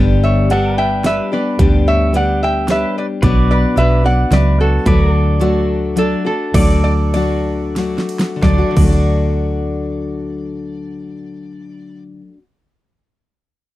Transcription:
Already playing: G1 G2 D3 G3 B3 D4 G4
0.23 C#5 E5
0.49 G3 B3 D4 G4 A4 B4 D5 F#5, closed hi-hat
0.53 G4
0.77 B4 E5 G5
1.04 G3 B3 D4 G4 B4 D5 E5, snare, closed hi-hat
1.32 G3 B3 D4 G4 B4 D5
1.59 D2 G2 D3 G3 B3 D4 G4, kick, closed hi-hat
1.88 C#5 E5
2.12 G3 B3 D4 G4 B4 D5, closed hi-hat
2.16 F#5
2.43 E5 G5
2.68 G3 B3 D4 G4 B4 C#5 E5, snare, closed hi-hat
2.98 B4 D5
3.22 B1 B2 F#3 B3 D4 F#4 B4 D5, kick, closed hi-hat
3.51 B4 D5
3.76 B1 F#3 B3 D4 F#4 B4 D5 E5, closed hi-hat
4.04 B3 D4 F#4 D5 F#5
4.31 C#2 F#3 B3 D4 F#4 B4 D5 E5, snare, closed hi-hat
4.61 F#4 A4
4.86 D2 D3 F#3 A3 D4 F#4 B4 D5, kick, closed hi-hat
5.02 A#4
5.13 A4
5.40 F#3 A3 D4 F#4 A4 D5, closed hi-hat
5.96 F#3 A3 D4 F#4 A4 D5, closed hi-hat
6.25 A3 D4 F#4 A4
6.54 D2 D3 F#3 A3 D4 F#4 A4 D5, kick, crash, ride
6.84 D5
7.14 F#3 A3 D4 F#4 D5, ride
7.76 F#3 A3 D4 F#4, snare, ride
7.98 snare
8.09 ride
8.19 snare
8.36 D3
8.42 D2 F#3 A4 D5, kick, snare
8.49 A3
8.53 D4
8.58 F#4
8.71 D3
8.77 D2 F#3 D5, kick, crash
8.83 A3
8.88 D4
8.92 F#4

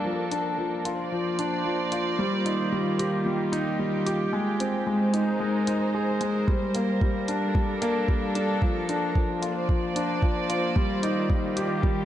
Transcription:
Already playing: D4 A4 A#4
0.04 F3 A#3
0.31 D4, closed hi-hat
0.58 F3
0.67 F4
0.85 F4, closed hi-hat
0.99 C5 D5
1.12 F3
1.39 D4, closed hi-hat
1.66 F3
1.92 F4, closed hi-hat
2.18 D#3 G3
2.46 D#4, closed hi-hat
2.72 G3
2.99 G4, closed hi-hat
3.16 G4
3.26 G3
3.52 D#4, closed hi-hat
3.79 G3
4.06 G4, closed hi-hat
4.32 G#3
4.60 C4, closed hi-hat
4.76 D#4
4.80 C5
4.87 G#3
5.14 D#4, closed hi-hat
5.30 A#4
5.40 G#3
5.67 D#4, closed hi-hat
5.94 G#4
6.21 G#3, closed hi-hat
6.47 G3, kick
6.75 A#3, closed hi-hat
7.01 G3, kick
7.14 D4
7.28 D4, closed hi-hat
7.44 A4
7.55 G3, kick
7.82 A#3, closed hi-hat
8.08 G3, kick
8.35 D4, closed hi-hat
8.62 F3 A#3, kick
8.89 D4, closed hi-hat
9.08 F4
9.15 F3, kick
9.28 C5
9.42 F4, closed hi-hat
9.57 D5
9.69 F3, kick
9.96 D4, closed hi-hat
10.22 F3, kick
10.49 F4, closed hi-hat
10.76 D#3 G3, kick
11.03 D#4, closed hi-hat
11.29 G3, kick
11.57 G4, closed hi-hat
11.72 G4
11.83 G3, kick

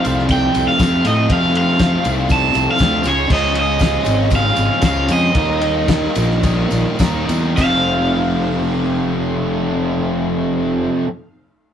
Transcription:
Already playing: F2 C3 A3 D#4 C5 F5
0.03 C2 F3 A3 C4, ride, tambourine
0.18 snare
0.28 F2 C3 F3 A3 C4 G5, kick, ride, tambourine
0.54 C2, ride, tambourine
0.68 F5
0.78 F2 C3 F3 A3, kick, snare, ride, tambourine
0.82 C4
1.03 A2 F3 A3 C4, ride, tambourine
1.07 D#5
1.27 F2 C3 F3 A3 C4, kick, ride
1.32 F5
1.53 F3 A3 C4, ride, tambourine
1.57 F5
1.77 C3 F3 A3 C4, kick, snare, ride, tambourine
2.03 C2 F3 A3 C4, ride, tambourine
2.27 F2 C3 F3 A3 C4, kick, ride, tambourine
2.32 A5
2.54 C2, ride, tambourine
2.71 F5
2.77 D2 C3 F3 A3 C4, kick, ride, tambourine
2.81 snare
3.02 C#2 F3 G#3 C#4, ride, tambourine
3.06 C#3 G#3 C#4 C#5
3.28 C#2 C#3 F3 G#3 C#4, kick, crash
3.33 D#5
3.54 F3 G#3 C#4, ride, tambourine
3.60 D#5
3.79 C#3 F3 G#3 C#4, kick, snare, ride, tambourine
4.03 G#1 F3 G#3 C#4, ride, tambourine
4.29 C#3 F3 G#3 C#4, kick, ride, tambourine
4.36 F5
4.56 G#1, ride, tambourine
4.81 C#2 C#3 F3 G#3 C#4, kick, snare, ride, tambourine
4.86 F5
5.06 F2 F3 G#3 C#4, ride, tambourine
5.12 D#5
5.32 D#2 D#3 G3 A#3 D#4 A#4, kick, ride, tambourine
5.37 D#4
5.60 G3 A#3 D#4, ride, tambourine
5.87 D#3 G3 A#3 D#4, kick, snare, ride, tambourine
6.13 A#1 G3 A#3 D#4, ride, tambourine
6.31 snare
6.41 D#3 G3 A#3 D#4, kick, ride, tambourine
6.71 A#1, ride, tambourine
6.97 D#2 D#3 G3 A#3 D#4, kick, snare, ride, tambourine
7.25 E2 G3 A#3 D#4
7.29 ride, tambourine
7.55 F1 F2 C3 F3 A3 F5, kick, crash, tambourine
7.59 A3 C4 D#4 C5 F5

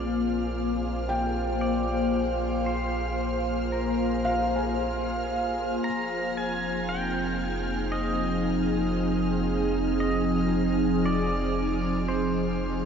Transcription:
Already playing: A#1 A#3 C4 F4 G#4 C5 D5 F5 F6
1.09 G5
1.61 D5
2.66 C5
3.72 A#4
4.25 F5
4.56 G#5
5.83 F1 F3 A#5
6.35 C4 G#5
6.47 D#4
6.65 G#4
6.89 G5
7.92 D#5
10.00 D#5
11.06 D5
12.08 C5

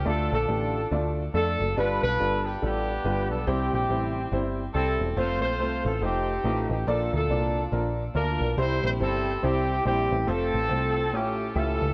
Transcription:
0.05 D2 D3 A3 D4 F4 A4 D5
0.32 A#1 D4 F4 A4
0.48 A1 A3 D4 F4 G4
0.91 D2 A3 D4 F4 D5
1.34 F2 A3 D4 F4 A4
1.60 F#1
1.77 G1 G2 G3 D4 F4 B4
2.03 B1 D4 F4 B4
2.19 G1 G3 D4 F4 A4
2.46 G4
2.62 A1 G3 B3 D4 F4 G4 A4
3.04 G1 G3 D4 F4 B4
3.31 B1 A4
3.47 C2 C3 G3 C4 E4 G4 C5
3.73 A#1 C4 E4 G4
3.89 A1 G3 C4 E4 C5
4.32 G1 G3 C4 E4 C5
4.74 C2 G3 C4 E4 G4 A4
4.99 E1
5.17 F1 A3 C4 F4 A4 C5
5.42 A#1 F4 A4 C5
5.59 C2 A3 C4 F4 C5
5.85 A1 A4
6.01 F1 A3 C4 D#4 F4 G4 C5
6.44 A1 A3 D#4 F4 D#5
6.70 A1 G4
6.87 A#1 A#2 A#3 D4 F4 A4 D5
7.13 D2 D4 F4 A4
7.30 C2 A#3 D4 F4 D5
7.72 A#1 A#3 D4 F4 A#4
8.15 D2 A#3 D4 F4 A#4 D5
8.41 B1
8.57 C2 C3 G3 C4 E4 G4 C5
8.83 A#1 C5
9.00 G1 G3 C4 E4 A4 C5
9.42 C2 G3 C4 E4 G4 C5
9.85 A#1 G3 C4 E4 G4 C5
10.11 A1
10.27 F1 A3 C4 F4 A4 C5
10.54 A1
10.70 C2 A3 C4 F4 C5
11.13 A1 A2 A3 C#4 E4 F4 G4 C#5
11.56 C#2 A3 C#4 E4 F4 G4 A4 E5
11.81 C#2

